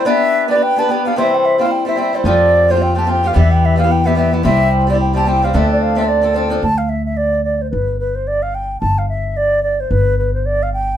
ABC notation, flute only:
X:1
M:4/4
L:1/16
Q:"Swing" 1/4=219
K:Gmix
V:1 name="Flute"
e6 d2 g2 a2 g2 f2 | e2 g2 e2 f2 g2 e2 e2 c2 | d6 c2 g2 a2 g2 f2 | e2 g2 e2 f2 g2 e2 e2 z2 |
e6 d2 g2 a2 g2 f3/2 f/2 | e2 d2 f2 e2 d4 z4 | a2 f2 e2 e2 d4 d3/2 d/2 c2 | B4 B2 c2 d2 f2 g4 |
a2 f2 e4 d4 d2 c2 | B4 B2 c2 d2 f2 g4 |]